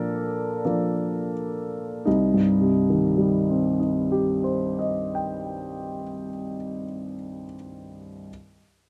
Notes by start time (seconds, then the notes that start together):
Already playing: A#2 F3 A#3 D4 A4 A#4
0.65 F3 A#3 D4
2.05 C2 D#4
2.34 G2
2.61 C3
2.90 D#3
3.18 G3
3.50 C4
3.80 D#4
4.12 G4
4.44 C5
4.79 D#5
5.15 G5